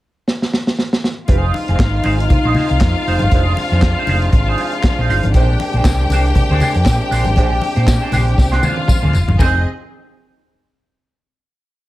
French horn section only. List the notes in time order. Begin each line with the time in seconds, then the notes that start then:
1.28 C3 F3 G#3 D#4
3.32 D4
5.33 C3 A#3
7.37 C4
9.40 C3 F3 G#3 D#4